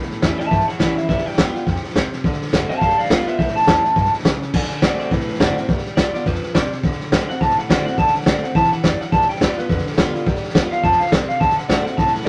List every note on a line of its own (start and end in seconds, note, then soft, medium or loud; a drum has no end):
0.00 0.49 A2 medium
0.00 snare soft
0.10 muted upright bass stroke medium
0.10 snare soft
0.22 0.35 E2 medium
0.22 0.38 E3 medium
0.22 0.39 G3 medium
0.22 0.39 C#4 medium
0.22 0.38 E4 medium
0.22 kick medium
0.22 snare loud
0.22 hi-hat pedal medium
0.39 0.52 C#4 soft
0.39 0.51 E4 medium
0.39 0.50 E5 medium
0.39 0.51 A5 loud
0.39 snare soft
0.51 1.06 E2 medium
0.51 0.64 G2 medium
0.51 0.67 E5 medium
0.51 0.68 A5 medium
0.51 kick loud
0.51 snare soft
0.60 snare soft
0.68 0.79 C#5 medium
0.68 0.79 F#5 medium
0.68 muted upright bass stroke medium
0.68 snare soft
0.79 0.93 A1 medium
0.79 0.96 E3 loud
0.79 0.96 G3 medium
0.79 0.96 C#4 loud
0.79 0.95 E4 loud
0.79 0.97 C#5 medium
0.79 0.98 F#5 loud
0.79 kick medium
0.79 snare loud
0.79 hi-hat pedal medium
0.96 1.09 C#4 medium
0.96 1.08 E4 medium
0.96 1.08 C5 medium
0.96 1.08 E5 loud
0.96 muted upright bass stroke medium
0.96 snare soft
1.09 1.21 G1 loud
1.09 1.36 G3 medium
1.09 1.24 B4 medium
1.09 1.26 E5 loud
1.09 kick loud
1.09 snare soft
1.18 snare soft
1.25 1.81 G5 medium
1.25 muted upright bass stroke medium
1.25 snare soft
1.32 snare soft
1.37 1.50 D2 medium
1.37 1.53 G3 medium
1.37 1.54 B3 medium
1.37 1.53 F4 medium
1.37 kick medium
1.37 snare loud
1.37 hi-hat pedal medium
1.54 1.67 B3 soft
1.54 1.66 F4 soft
1.54 muted upright bass stroke medium
1.54 snare soft
1.67 1.79 F2 medium
1.67 1.94 F3 medium
1.67 kick loud
1.67 snare soft
1.75 snare soft
1.83 muted upright bass stroke medium
1.83 snare soft
1.89 snare soft
1.95 2.08 D2 medium
1.95 2.23 C3 medium
1.95 kick medium
1.95 snare loud
1.95 hi-hat pedal medium
2.12 muted upright bass stroke medium
2.12 snare soft
2.24 2.37 D2 loud
2.24 2.52 D3 medium
2.24 kick loud
2.24 snare soft
2.32 snare soft
2.41 muted upright bass stroke medium
2.41 snare soft
2.47 snare soft
2.53 2.65 F#1 medium
2.53 2.69 D3 medium
2.53 2.69 A3 medium
2.53 2.69 C4 medium
2.53 2.69 F#4 medium
2.53 kick medium
2.53 snare loud
2.53 hi-hat pedal medium
2.69 2.82 C4 soft
2.69 2.81 F#4 medium
2.69 2.80 F5 medium
2.69 2.81 A5 medium
2.69 snare soft
2.81 2.94 G1 medium
2.81 3.09 G3 medium
2.81 2.97 F5 medium
2.81 2.98 A5 medium
2.81 kick loud
2.81 snare soft
2.90 snare soft
2.98 3.09 D5 medium
2.98 3.10 F5 medium
2.98 snare soft
3.05 snare soft
3.10 3.23 D2 medium
3.10 3.26 G3 medium
3.10 3.27 B3 loud
3.10 3.25 F4 loud
3.10 3.26 D5 medium
3.10 3.27 F5 loud
3.10 kick medium
3.10 snare loud
3.10 hi-hat pedal medium
3.27 3.39 B3 soft
3.27 3.38 F4 medium
3.27 3.38 B4 medium
3.27 3.38 E5 medium
3.27 muted upright bass stroke medium
3.27 snare soft
3.38 3.51 A1 loud
3.38 3.94 A2 medium
3.38 3.54 C5 medium
3.38 3.55 E5 medium
3.38 kick loud
3.38 snare soft
3.48 snare soft
3.56 4.11 A5 loud
3.56 snare soft
3.62 snare soft
3.67 3.80 E2 medium
3.67 3.83 E3 medium
3.67 3.84 G3 medium
3.67 3.84 C#4 medium
3.67 3.83 E4 medium
3.67 kick medium
3.67 snare loud
3.67 hi-hat pedal medium
3.84 3.97 C#4 soft
3.84 3.96 E4 soft
3.84 muted upright bass stroke medium
3.84 snare soft
3.96 4.09 G2 medium
3.96 4.24 B2 medium
3.96 kick loud
3.96 snare soft
4.04 snare soft
4.13 snare soft
4.19 snare soft
4.25 4.38 C#2 medium
4.25 4.53 C#3 medium
4.25 kick medium
4.25 snare loud
4.25 hi-hat pedal medium
4.42 snare soft
4.53 4.66 D2 loud
4.53 4.81 D3 medium
4.53 kick loud
4.53 snare soft
4.53 crash loud
4.62 snare soft
4.70 muted upright bass stroke medium
4.70 snare soft
4.82 4.95 A2 medium
4.82 5.10 D3 medium
4.82 5.11 A3 medium
4.82 5.11 C4 loud
4.82 5.11 F#4 medium
4.82 4.99 D5 medium
4.82 kick medium
4.82 snare loud
4.82 hi-hat pedal medium
4.99 5.11 D5 medium
4.99 muted upright bass stroke medium
4.99 snare soft
5.11 5.66 A2 loud
5.11 5.24 C3 medium
5.11 5.39 B4 medium
5.11 kick loud
5.11 snare soft
5.20 snare soft
5.28 muted upright bass stroke medium
5.28 snare soft
5.34 snare soft
5.40 5.53 F#1 medium
5.40 5.56 D3 medium
5.40 5.56 A3 loud
5.40 5.57 C4 loud
5.40 5.55 F#4 loud
5.40 5.56 D5 loud
5.40 kick medium
5.40 snare loud
5.40 hi-hat pedal medium
5.56 5.69 C4 soft
5.56 5.68 F#4 medium
5.56 snare soft
5.68 5.81 G1 loud
5.68 5.95 G3 medium
5.68 kick loud
5.68 snare soft
5.78 snare soft
5.85 muted upright bass stroke medium
5.85 snare soft
5.97 6.10 D2 medium
5.97 6.13 G3 medium
5.97 6.13 B3 medium
5.97 6.12 F4 medium
5.97 6.13 D5 medium
5.97 kick medium
5.97 snare loud
5.97 hi-hat pedal medium
6.14 6.26 B3 soft
6.14 6.25 F4 medium
6.14 6.27 D5 medium
6.14 muted upright bass stroke medium
6.14 snare soft
6.26 6.39 F2 medium
6.26 6.54 F3 medium
6.26 6.54 B4 medium
6.26 kick loud
6.26 snare soft
6.34 snare soft
6.43 snare soft
6.55 6.67 D2 medium
6.55 6.82 C3 loud
6.55 6.71 D5 loud
6.55 kick medium
6.55 snare loud
6.55 hi-hat pedal medium
6.72 snare soft
6.83 6.96 D2 loud
6.83 7.11 D3 medium
6.83 kick loud
6.83 snare soft
6.92 snare soft
7.00 muted upright bass stroke medium
7.00 snare soft
7.12 7.25 A2 medium
7.12 7.28 D3 medium
7.12 7.28 A3 medium
7.12 7.29 C4 medium
7.12 7.27 F#4 medium
7.12 kick medium
7.12 snare loud
7.12 hi-hat pedal medium
7.28 7.41 C4 soft
7.28 7.40 F#4 soft
7.28 7.41 F#5 loud
7.28 muted upright bass stroke medium
7.28 snare soft
7.41 7.96 A2 loud
7.41 7.53 C3 medium
7.41 7.57 A5 medium
7.41 kick loud
7.41 snare soft
7.50 snare soft
7.57 7.70 F#5 medium
7.57 muted upright bass stroke medium
7.57 snare soft
7.69 7.82 A2 medium
7.69 7.85 D3 medium
7.69 7.85 A3 loud
7.69 7.86 C4 loud
7.69 7.85 F#4 loud
7.69 7.86 D5 medium
7.69 kick medium
7.69 snare loud
7.69 hi-hat pedal medium
7.86 7.99 C4 medium
7.86 7.98 F#4 medium
7.86 7.98 F#5 loud
7.86 muted upright bass stroke medium
7.86 snare soft
7.97 8.10 D2 loud
7.97 8.25 D3 medium
7.97 8.15 A5 medium
7.97 kick loud
7.97 snare soft
8.06 snare soft
8.14 8.26 F#5 medium
8.14 muted upright bass stroke medium
8.14 snare soft
8.21 snare soft
8.26 8.39 A2 medium
8.26 8.42 D3 medium
8.26 8.43 A3 medium
8.26 8.43 C4 medium
8.26 8.42 F#4 medium
8.26 8.43 D5 medium
8.26 kick medium
8.26 snare loud
8.26 hi-hat pedal medium
8.43 8.55 C4 soft
8.43 8.54 F#4 soft
8.43 8.55 F#5 medium
8.43 muted upright bass stroke medium
8.43 snare soft
8.55 8.68 C3 medium
8.55 8.83 E3 medium
8.55 8.71 A5 medium
8.55 kick loud
8.55 snare soft
8.64 snare soft
8.71 8.84 F#5 medium
8.71 muted upright bass stroke medium
8.71 snare soft
8.84 8.96 F#1 medium
8.84 9.11 F#3 medium
8.84 9.00 D5 loud
8.84 kick medium
8.84 snare loud
8.84 hi-hat pedal medium
9.00 9.12 F#5 loud
9.00 snare soft
9.12 9.25 G1 loud
9.12 9.39 G3 medium
9.12 9.28 A5 medium
9.12 kick loud
9.12 snare soft
9.21 snare soft
9.28 9.41 G5 medium
9.28 muted upright bass stroke medium
9.28 snare soft
9.35 snare soft
9.40 9.54 D2 medium
9.40 9.57 G3 medium
9.40 9.57 B3 medium
9.40 9.56 F4 medium
9.40 9.57 D5 medium
9.40 kick medium
9.40 snare loud
9.40 hi-hat pedal medium
9.57 9.70 B3 soft
9.57 9.69 F4 medium
9.57 9.86 B4 loud
9.57 muted upright bass stroke medium
9.57 snare soft
9.69 9.82 F2 medium
9.69 10.24 D3 medium
9.69 kick loud
9.69 snare soft
9.78 snare soft
9.85 muted upright bass stroke medium
9.85 snare soft
9.92 snare soft
9.97 10.11 D2 medium
9.97 10.13 G3 loud
9.97 10.14 B3 loud
9.97 10.13 F4 loud
9.97 kick medium
9.97 snare loud
9.97 hi-hat pedal medium
10.14 10.27 B3 soft
10.14 10.26 F4 medium
10.14 muted upright bass stroke medium
10.14 snare soft
10.26 10.39 G1 medium
10.26 10.53 G3 medium
10.26 kick loud
10.26 snare soft
10.35 snare soft
10.43 muted upright bass stroke medium
10.43 snare soft
10.49 snare soft
10.55 10.68 D2 medium
10.55 10.71 G3 medium
10.55 10.71 B3 medium
10.55 10.70 F4 medium
10.55 kick loud
10.55 snare loud
10.55 hi-hat pedal medium
10.71 10.84 B3 soft
10.71 10.83 F4 soft
10.71 10.84 F5 loud
10.71 muted upright bass stroke medium
10.71 snare soft
10.83 10.96 F2 medium
10.83 11.11 F3 medium
10.83 11.00 A5 medium
10.83 kick loud
10.83 snare soft
10.92 snare soft
10.99 11.11 F5 medium
10.99 muted upright bass stroke medium
10.99 snare soft
11.06 snare soft
11.11 11.25 C#2 medium
11.11 11.40 C3 loud
11.11 11.28 D5 loud
11.11 kick medium
11.11 snare loud
11.11 hi-hat pedal medium
11.28 11.40 F5 loud
11.28 muted upright bass stroke medium
11.28 snare soft
11.40 11.53 D2 loud
11.40 11.67 D3 medium
11.40 11.56 A5 loud
11.40 kick loud
11.40 snare soft
11.50 snare soft
11.57 11.69 F#5 medium
11.57 snare soft
11.68 11.82 A2 medium
11.68 11.85 D3 medium
11.68 11.85 A3 medium
11.68 11.86 C4 medium
11.68 11.85 F#4 loud
11.68 11.85 D5 loud
11.68 kick medium
11.68 snare loud
11.68 hi-hat pedal medium
11.85 11.98 C4 soft
11.85 11.97 F#4 medium
11.85 11.97 F#5 loud
11.85 muted upright bass stroke medium
11.85 snare soft
11.97 12.29 A2 loud
11.97 12.10 C3 medium
11.97 12.13 A5 medium
11.97 kick loud
11.97 snare soft
12.07 snare soft
12.13 12.25 F#5 medium
12.13 muted upright bass stroke medium
12.13 snare soft
12.21 snare soft
12.25 12.29 D3 loud
12.25 12.29 D5 medium